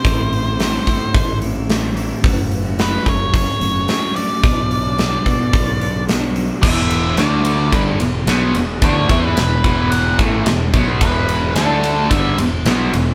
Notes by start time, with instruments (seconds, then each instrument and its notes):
Already playing: lead electric guitar C5
0.03 fingered electric bass A1, clean electric guitar A2 E3 A3 C4 E4, kick, open hi-hat
0.33 open hi-hat
0.45 clean electric guitar A3 C4 E4
0.58 clean electric guitar A2 E3 A3 C4 E4, snare, open hi-hat
0.85 fingered electric bass A2, clean electric guitar E3 A3 C4 E4, kick, open hi-hat
1.00 muted clean electric guitar stroke
1.14 fingered electric bass A1, kick, open hi-hat
1.28 muted clean electric guitar stroke
1.40 clean electric guitar E3 A3 C4 E4, open hi-hat
1.54 clean electric guitar A3 C4 E4
1.67 clean electric guitar A2 E3 A3 C4 E4, snare, open hi-hat
1.95 clean electric guitar E3 A3 C4 E4, open hi-hat
2.09 clean electric guitar A3 C4 E4
2.22 fingered electric bass F#1, clean electric guitar F#3 A3 C#4 F#4, kick, open hi-hat
2.52 open hi-hat
2.64 clean electric guitar A3 C#4 F#4
2.78 clean electric guitar F#3 A3 C#4 F#4, lead electric guitar B4, snare, open hi-hat
3.05 fingered electric bass F#1, clean electric guitar F#3 A3 C#4 F#4, lead electric guitar C#5, kick, open hi-hat
3.19 muted clean electric guitar stroke
3.34 fingered electric bass F#1, lead electric guitar C#5, kick, open hi-hat
3.47 muted clean electric guitar stroke
3.59 fingered electric bass F#1, clean electric guitar F#3 A3 C#4 F#4, open hi-hat
3.73 clean electric guitar A3 C#4 F#4
3.86 clean electric guitar F#3 A3 C#4 F#4, snare, open hi-hat
4.14 clean electric guitar F#3 A3 C#4 F#4, lead electric guitar D5, open hi-hat
4.28 clean electric guitar A3 C#4 F#4
4.42 fingered electric bass B1, clean electric guitar B2 F#3 B3 D4 F#4, kick, open hi-hat
4.71 open hi-hat
4.84 clean electric guitar B3 D4 F#4
4.97 clean electric guitar B2 F#3 B3 D4 F#4, snare, open hi-hat
5.25 fingered electric bass B2, clean electric guitar F#3 B3 D4 F#4, kick, open hi-hat
5.39 muted clean electric guitar stroke
5.53 fingered electric bass B1, kick, open hi-hat
5.67 muted clean electric guitar stroke
5.80 clean electric guitar F#3 B3 D4 F#4, open hi-hat
5.94 clean electric guitar B3 D4 F#4
6.07 clean electric guitar B2 F#3 B3 D4 F#4, snare, open hi-hat
6.35 clean electric guitar F#3 B3 D4 F#4, open hi-hat
6.48 clean electric guitar B3 D4 F#4
6.62 fingered electric bass E1, distorted electric guitar E2 B2 E3, clean electric guitar E3 B3 E4 G#4, lead electric guitar E5, kick, crash
6.91 ride
7.03 clean electric guitar B3 E4 G#4
7.17 fingered electric bass D2, clean electric guitar D3 A3 D4 A4, distorted electric guitar D3 A3 D4, lead electric guitar D5, snare, ride
7.30 clean electric guitar D3 A3 D4 A4
7.43 clean electric guitar D3 A3 D4 A4, ride
7.58 muted clean electric guitar stroke
7.70 fingered electric bass G1, distorted electric guitar G2 D3 G3, clean electric guitar E3 B3 E4 G#4, lead electric guitar B4, kick, ride
7.85 clean electric guitar B3 E4 G#4
7.99 fingered electric bass E1, distorted electric guitar E2 B2, clean electric guitar E3 B3 E4 G#4, ride
8.13 muted clean electric guitar stroke
8.26 fingered electric bass B1, distorted electric guitar B2 F#3 B3, clean electric guitar E3 B3 E4 G#4, snare, ride
8.53 fingered electric bass E1, distorted electric guitar E2 B2, clean electric guitar E3 B3 E4 G#4, ride
8.67 clean electric guitar B3 E4 G#4
8.81 fingered electric bass D2, distorted electric guitar D3 A3 D4, clean electric guitar E3 B3 E4 G#4, lead electric guitar C#5, kick, ride
9.09 fingered electric bass E2, distorted electric guitar E3 B3 E4, kick, ride
9.22 clean electric guitar B3 E4 G#4
9.26 lead electric guitar B4
9.35 fingered electric bass E1, distorted electric guitar E2 B2, lead electric guitar B4, snare, ride
9.49 clean electric guitar E3 B3 E4 G#4
9.63 fingered electric bass E1, distorted electric guitar E2 B2 E3, clean electric guitar E3 B3 E4 G#4, kick, ride
9.78 muted clean electric guitar stroke
9.91 lead electric guitar F#5, ride
10.05 clean electric guitar B3 E4 G#4
10.18 fingered electric bass A1, distorted electric guitar A2 E3 A3, clean electric guitar E3 B3 E4 G#4, kick, ride
10.33 muted clean electric guitar stroke
10.45 fingered electric bass E1, distorted electric guitar E2 B2, clean electric guitar E3 B3 E4 G#4, snare, ride
10.73 fingered electric bass B1, distorted electric guitar B2 F#3 B3, clean electric guitar E3 B3 E4 G#4, kick, ride
10.86 clean electric guitar B3 E4 G#4
11.00 fingered electric bass E1, distorted electric guitar E2 B2 E3, clean electric guitar E3 B3 E4 G#4, lead electric guitar B4, kick, ride
11.29 ride
11.41 clean electric guitar B3 E4 G#4
11.55 fingered electric bass D2, clean electric guitar D3 A3 D4 A4, distorted electric guitar D3 A3 D4, lead electric guitar A4, snare, ride
11.68 clean electric guitar D3 A3 D4 A4
11.82 clean electric guitar D3 A3 D4 A4, ride
11.97 muted clean electric guitar stroke
12.09 fingered electric bass G1, distorted electric guitar G2 D3 G3, clean electric guitar E3 B3 E4 G#4, lead electric guitar E5, kick, ride
12.23 clean electric guitar B3 E4 G#4
12.37 fingered electric bass E1, distorted electric guitar E2 B2, clean electric guitar E3 B3 E4 G#4, ride
12.52 muted clean electric guitar stroke
12.65 fingered electric bass B1, distorted electric guitar B2 F#3 B3, clean electric guitar E3 B3 E4 G#4, snare, ride
12.92 fingered electric bass E1, distorted electric guitar E2 B2, clean electric guitar E3 B3 E4 G#4, ride
13.06 clean electric guitar B3 E4 G#4